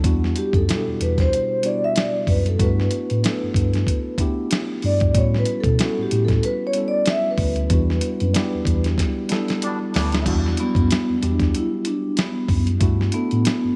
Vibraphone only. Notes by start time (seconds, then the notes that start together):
0.38 G4
0.56 A4
1.02 B4
1.20 C5
1.66 D5
1.84 E5
1.98 D5
2.29 B4
2.48 A4
2.62 B4
4.86 D5
5.18 C#5
5.39 B4
5.60 A4
6.03 G4
6.25 A4
6.45 B4
6.67 C#5
6.88 D5
7.09 E5
7.31 B4
10.60 B3
11.17 E4
11.25 D4
11.56 E4
11.88 D4
12.20 B3
13.14 B3